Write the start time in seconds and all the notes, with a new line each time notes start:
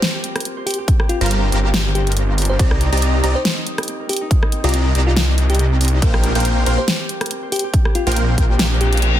Already playing: F4 G4 A#4 C5
0.02 C4 C5, snare, closed hi-hat
0.14 G4
0.24 C4, closed hi-hat
0.35 A#4, cross-stick, closed hi-hat
0.40 closed hi-hat
0.45 C4, closed hi-hat
0.57 C5
0.66 C4 G4, open hi-hat
0.71 closed hi-hat
0.74 closed hi-hat
0.78 G4
0.88 C4, kick, closed hi-hat
1.00 G4, cross-stick
1.09 C4 F4, closed hi-hat
1.21 G1 G3 F4 G4 A#4 C5 F5 A#5, closed hi-hat
1.26 closed hi-hat
1.31 C4, closed hi-hat
1.43 C5
1.52 G1 G3 C4 G4 C5 F5 A#5, closed hi-hat
1.64 G4
1.74 C4, snare, closed hi-hat
1.85 G4
1.95 C4 G4, closed hi-hat
2.07 A#4, closed hi-hat
2.12 closed hi-hat
2.17 C4, closed hi-hat
2.28 C5
2.38 C4, closed hi-hat, open hi-hat
2.45 closed hi-hat
2.50 G4 C5
2.59 C2 C4 G4 C5 D5 D#5 A#5, kick, closed hi-hat
2.71 D#4, cross-stick
2.81 C4, closed hi-hat
2.92 C2 C4 G4 D5 D#5 A#5, closed hi-hat
2.97 closed hi-hat
3.02 C4, closed hi-hat
3.14 A#4
3.24 C2 C4 G4 D5 D#5 A#5, closed hi-hat
3.35 D#4 C5
3.45 C4, snare, closed hi-hat
3.57 D#4
3.67 C4, closed hi-hat
3.78 G4, cross-stick, closed hi-hat
3.83 closed hi-hat
3.88 C4, closed hi-hat
4.00 A#4
4.09 C4 G4, closed hi-hat, open hi-hat
4.17 closed hi-hat
4.21 D#4
4.31 kick, closed hi-hat
4.43 D#4, cross-stick
4.52 C4, closed hi-hat
4.64 C2 C4 F4 G4 D5 D#5 A#5, closed hi-hat
4.69 closed hi-hat
4.74 C4, closed hi-hat
4.85 A#4
4.95 C2 C4 G4 D5 D#5 A#5, closed hi-hat
5.07 D#4 F4
5.17 C4, snare, closed hi-hat
5.28 D#4
5.38 C4, closed hi-hat
5.50 G4, closed hi-hat
5.55 closed hi-hat
5.59 C4 G4, closed hi-hat
5.71 A#4
5.81 C4, closed hi-hat, open hi-hat
5.88 closed hi-hat
5.93 D#4
6.02 A#1 A#3 A#4 C5 F5 G5, kick, closed hi-hat
6.14 G4, cross-stick
6.24 C4, closed hi-hat
6.35 A#1 A#3 A#4 C5 F5 G5, closed hi-hat
6.40 closed hi-hat
6.45 C4, closed hi-hat
6.57 C5
6.66 A#1 A#3 C4 A#4 C5 F5 G5, closed hi-hat
6.78 G4 C5
6.88 C4, snare, closed hi-hat
7.00 G4
7.09 C4, closed hi-hat
7.21 A#4, cross-stick, closed hi-hat
7.26 closed hi-hat
7.31 C4, closed hi-hat
7.43 C5
7.52 C4 G4, open hi-hat
7.56 closed hi-hat
7.59 closed hi-hat
7.64 G4
7.74 C4, kick, closed hi-hat
7.85 G4, cross-stick
7.95 C4 F4, closed hi-hat
8.07 A#1 A#3 F4 A#4 C5 F5 G5, closed hi-hat
8.12 closed hi-hat
8.16 C4, closed hi-hat
8.28 C5
8.38 A#1 A#3 C4 A#4 C5 F5 G5, kick, closed hi-hat
8.50 G4
8.59 C4, snare, closed hi-hat, reverse cymbal
8.71 G4
8.81 C4 G4, closed hi-hat
8.92 G5, closed hi-hat
8.97 closed hi-hat
9.02 C4, closed hi-hat
9.14 C4